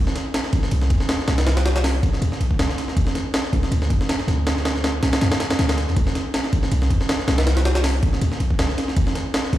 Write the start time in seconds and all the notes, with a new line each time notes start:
0.07 snare
0.16 snare, ride
0.34 snare, ride
0.44 snare
0.53 A#1, kick, ride
0.63 snare
0.71 C2, ride
0.82 snare
0.90 F2, kick, ride
1.00 snare
1.09 snare, ride
1.19 snare
1.28 C2, snare, ride
1.38 snare, ride
1.47 snare, ride
1.57 snare, ride
1.66 snare, ride
1.76 snare, ride
1.84 snare, open hi-hat
2.03 A#1, kick, ride
2.13 snare
2.22 D#2, ride
2.32 snare
2.40 A#1, ride
2.51 kick
2.59 C2, snare, ride
2.69 snare
2.78 snare, ride
2.88 snare
2.97 D2, kick, ride
3.07 snare
3.15 snare, ride
3.34 snare, ride
3.44 snare
3.53 C2, kick, ride
3.63 snare
3.71 D2, ride
3.82 snare
3.90 G2, kick, ride
4.01 snare
4.09 snare, ride
4.19 snare
4.28 D2, snare, ride
4.47 snare, ride
4.57 snare
4.65 snare, ride
4.76 snare
4.84 snare, ride
5.03 C2, snare, ride
5.13 snare, ride
5.21 F2, snare, ride
5.32 snare, ride
5.40 snare, ride
5.51 snare, ride
5.59 D2, snare, ride
5.69 snare, ride
5.78 snare, ride
5.88 F2, snare
5.96 C2, kick, ride
6.07 snare
6.15 snare, ride
6.34 snare, ride
6.44 snare
6.53 A#1, kick, ride
6.63 snare
6.72 C2, ride
6.82 snare
6.90 F2, kick, ride
7.01 snare
7.09 snare, ride
7.19 snare
7.28 C2, snare, ride
7.38 snare, ride
7.47 snare, ride
7.57 snare, ride
7.65 snare, ride
7.75 snare, ride
7.84 snare, open hi-hat
8.03 A#1, kick, ride
8.13 snare
8.21 D#2, ride
8.32 snare
8.40 A#1, ride
8.51 kick
8.59 C2, snare, ride
8.69 snare
8.78 snare, ride
8.88 snare
8.97 D2, kick, ride
9.07 snare
9.15 snare, ride
9.34 snare, ride
9.45 snare
9.53 C2, kick, ride